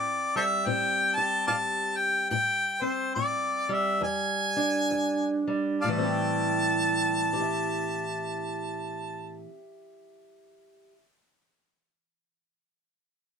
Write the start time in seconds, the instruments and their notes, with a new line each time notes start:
Already playing: steel-string acoustic guitar A2 C4, harmonica D5
0.36 steel-string acoustic guitar G3, harmonica A4 C5 E5
0.66 steel-string acoustic guitar A2 C4, harmonica G5
1.15 steel-string acoustic guitar G4, harmonica A5
1.47 steel-string acoustic guitar A2, harmonica D5 F5 A5
1.97 harmonica G5
2.30 steel-string acoustic guitar A2, harmonica G5
2.82 steel-string acoustic guitar C4, harmonica C5
3.15 steel-string acoustic guitar A2, harmonica D5
3.69 steel-string acoustic guitar G3
3.74 harmonica E5
4.01 steel-string acoustic guitar E2, harmonica G#5
4.56 steel-string acoustic guitar D4
4.91 steel-string acoustic guitar E2
5.47 steel-string acoustic guitar G3
5.81 steel-string acoustic guitar A2, harmonica D5 F5 A5
5.88 steel-string acoustic guitar E3
5.93 steel-string acoustic guitar G3
5.98 steel-string acoustic guitar C4
6.03 steel-string acoustic guitar G4
7.33 steel-string acoustic guitar G4
7.40 steel-string acoustic guitar E5